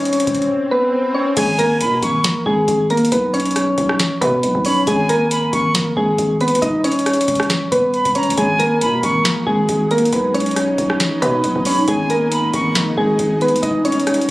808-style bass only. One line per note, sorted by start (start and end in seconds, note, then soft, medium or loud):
0.00 0.25 D#1 loud
0.27 0.48 D#1 loud
1.37 1.82 G#1 loud
1.81 2.01 B2 loud
2.02 2.23 G#1 loud
2.46 2.67 G#1 loud
2.68 3.10 G#1 loud
3.12 3.75 B1 loud
3.78 3.99 B1 loud
4.21 4.45 B2 loud
4.43 4.54 A#1 loud
4.55 4.86 B1 loud
4.87 5.50 G#1 loud
5.53 5.95 G#1 loud
5.97 6.18 G#1 loud
6.19 6.54 G#1 loud
6.52 6.62 D#2 loud
6.62 7.25 D#1 loud
7.28 7.70 D#1 loud
7.72 8.04 D#1 loud
8.05 8.29 D#1 loud
8.27 8.37 D#2 loud
8.38 8.83 G#1 loud
8.81 9.02 B2 loud
9.03 9.24 G#1 loud
9.47 9.68 G#1 loud
9.69 10.11 G#1 loud
10.13 10.76 B1 loud
10.78 10.99 B1 loud
11.22 11.45 B2 loud
11.44 11.55 A#1 medium
11.56 11.87 B1 loud
11.88 12.51 G#1 loud
12.54 12.96 G#1 loud
12.97 13.18 G#1 loud
13.19 13.54 G#1 loud
13.53 13.62 D#2 loud
13.63 14.26 D#1 loud